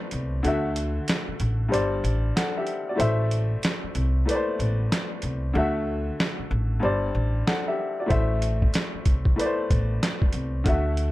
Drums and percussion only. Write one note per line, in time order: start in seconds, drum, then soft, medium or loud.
0.11 closed hi-hat medium
0.45 closed hi-hat medium
0.76 closed hi-hat medium
1.08 snare loud
1.08 closed hi-hat medium
1.40 closed hi-hat medium
1.74 closed hi-hat medium
2.05 closed hi-hat medium
2.37 snare loud
2.37 closed hi-hat medium
2.67 closed hi-hat medium
3.00 closed hi-hat medium
3.31 closed hi-hat medium
3.63 snare loud
3.63 closed hi-hat medium
3.95 closed hi-hat medium
4.29 closed hi-hat medium
4.60 closed hi-hat medium
4.92 snare loud
4.92 closed hi-hat medium
5.22 closed hi-hat medium
6.20 snare loud
7.47 snare loud
8.10 kick loud
8.10 closed hi-hat medium
8.42 closed hi-hat medium
8.62 kick medium
8.74 snare loud
8.74 closed hi-hat medium
9.05 kick medium
9.05 closed hi-hat medium
9.25 kick medium
9.40 closed hi-hat medium
9.71 kick medium
9.71 closed hi-hat medium
10.03 snare loud
10.03 closed hi-hat medium
10.22 kick medium
10.33 closed hi-hat medium
10.66 kick loud
10.66 closed hi-hat medium
10.97 closed hi-hat medium